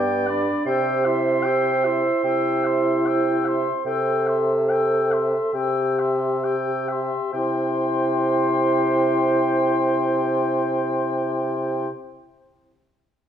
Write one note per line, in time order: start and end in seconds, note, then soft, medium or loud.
0.00 0.48 G2 soft
0.00 0.31 B3 soft
0.00 0.65 D5 medium
0.00 0.29 G5 soft
0.00 0.31 D6 soft
0.27 0.67 D4 soft
0.27 0.65 D5 soft
0.27 0.66 B5 soft
0.65 2.05 C3 soft
0.65 1.07 G4 soft
0.65 5.51 C5 medium
0.65 1.07 G5 soft
0.65 1.07 E6 soft
1.05 1.48 E4 soft
1.05 1.44 E5 soft
1.05 1.47 C6 soft
1.43 1.87 G4 soft
1.43 1.86 G5 soft
1.43 1.87 E6 soft
1.84 2.25 E4 soft
1.84 2.23 E5 soft
1.84 2.25 C6 soft
2.24 3.67 C3 soft
2.24 3.69 E4 soft
2.24 2.66 G5 soft
2.24 2.67 E6 soft
2.65 3.07 E5 soft
2.65 3.08 C6 soft
3.06 3.47 G5 soft
3.06 3.49 E6 soft
3.45 3.74 E5 soft
3.45 3.87 C6 soft
3.86 5.34 C3 soft
3.86 5.58 A4 medium
3.86 4.29 G5 soft
3.86 4.30 E6 soft
4.27 4.71 E5 soft
4.27 4.52 C6 soft
4.70 5.13 G5 soft
4.70 5.14 E6 soft
5.12 5.54 E5 soft
5.12 5.55 C6 soft
5.54 7.13 C3 soft
5.54 7.35 G4 soft
5.54 6.01 G5 soft
5.54 6.00 E6 soft
5.99 6.46 E5 soft
5.99 6.46 C6 soft
6.44 6.90 G5 soft
6.44 6.93 E6 soft
6.89 7.32 E5 soft
6.89 7.35 C6 soft
7.33 11.88 C3 soft
7.33 11.90 E4 soft
7.33 11.88 C5 medium
7.33 11.87 G5 soft
7.33 11.90 C6 soft